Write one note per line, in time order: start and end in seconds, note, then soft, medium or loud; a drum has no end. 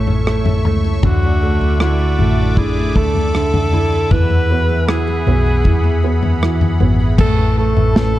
0.00 0.65 A1 medium
0.00 1.11 A2 medium
0.00 0.27 A3 medium
0.00 4.07 A3 medium
0.00 0.24 E4 medium
0.00 0.26 E4 medium
0.00 0.45 A4 medium
0.00 1.00 C#5 medium
0.00 1.01 E5 medium
0.00 1.01 C#6 medium
0.07 1.11 C#4 medium
0.07 floor tom soft
0.27 0.64 A3 medium
0.27 0.64 E4 medium
0.27 cross-stick medium
0.45 0.84 A4 medium
0.45 floor tom medium
0.65 1.01 C#2 medium
0.65 1.02 A3 soft
0.65 1.42 E4 medium
0.65 floor tom medium
0.84 1.99 A4 medium
1.03 1.57 D2 medium
1.03 2.57 D3 medium
1.03 3.34 D3 medium
1.03 1.78 F#4 medium
1.03 4.08 D5 medium
1.03 7.15 E5 medium
1.03 4.08 D6 medium
1.03 kick medium
1.03 floor tom loud
1.23 1.60 A3 soft
1.42 2.18 A3 soft
1.42 1.80 E4 medium
1.61 2.15 D2 medium
1.61 2.76 A3 medium
1.80 2.56 E4 soft
1.80 2.18 E4 soft
1.80 2.59 F#4 medium
1.80 cross-stick medium
1.99 2.38 A4 medium
2.19 2.96 A1 medium
2.19 2.95 A3 medium
2.19 2.96 E4 medium
2.19 floor tom medium
2.57 4.19 D3 medium
2.57 3.72 E4 medium
2.57 2.97 G#4 medium
2.57 kick medium
2.57 floor tom medium
2.77 3.14 A3 medium
2.96 4.07 D2 medium
2.96 4.08 A3 medium
2.96 3.34 E4 medium
2.96 4.13 A4 loud
2.96 kick medium
3.15 4.19 A3 soft
3.15 floor tom soft
3.35 4.09 D3 medium
3.35 3.72 E4 medium
3.35 cross-stick medium
3.54 3.91 A4 medium
3.54 floor tom medium
3.72 4.49 E4 medium
3.72 4.10 E4 medium
3.72 floor tom soft
3.92 4.19 A4 medium
4.11 5.22 E2 loud
4.11 5.64 E3 medium
4.11 4.88 E3 medium
4.11 7.16 G#4 medium
4.11 4.90 B4 loud
4.11 7.16 F#5 medium
4.11 7.16 B5 medium
4.11 kick medium
4.11 floor tom medium
4.30 4.69 B3 medium
4.50 5.26 B3 soft
4.50 4.87 F#4 medium
4.69 5.83 B3 medium
4.88 5.65 E3 soft
4.88 5.25 F#4 medium
4.88 6.42 G#4 medium
4.88 cross-stick loud
5.07 5.45 G#4 medium
5.27 5.62 B1 medium
5.27 6.02 B3 medium
5.27 6.02 F#4 medium
5.27 floor tom medium
5.46 6.60 G#4 medium
5.64 6.76 E2 loud
5.64 7.19 E3 medium
5.64 6.41 E3 medium
5.64 kick medium
5.64 floor tom medium
5.84 6.22 B3 medium
6.03 6.79 B3 medium
6.03 6.41 F#4 medium
6.22 7.96 B3 medium
6.22 floor tom medium
6.42 7.17 E3 medium
6.42 6.79 F#4 medium
6.42 cross-stick medium
6.61 6.99 G#4 medium
6.61 floor tom medium
6.80 7.16 G#1 medium
6.80 7.18 B3 medium
6.80 7.27 F#4 medium
6.80 floor tom medium
7.00 7.19 G#4 medium
7.18 7.73 A1 medium
7.18 8.19 A3 medium
7.18 7.56 A3 medium
7.18 7.55 A4 loud
7.18 8.19 B4 medium
7.18 7.56 B4 medium
7.18 8.19 E5 medium
7.18 8.19 A5 medium
7.18 8.19 C#6 medium
7.18 kick loud
7.18 floor tom loud
7.18 crash medium
7.39 7.75 E4 medium
7.57 7.95 A3 soft
7.57 8.19 A4 loud
7.57 8.14 B4 medium
7.77 8.19 A1 medium
7.77 8.19 E4 medium
7.77 floor tom medium
7.96 8.19 A3 medium
7.96 8.19 C#4 medium
7.96 snare loud
8.16 8.19 B4 medium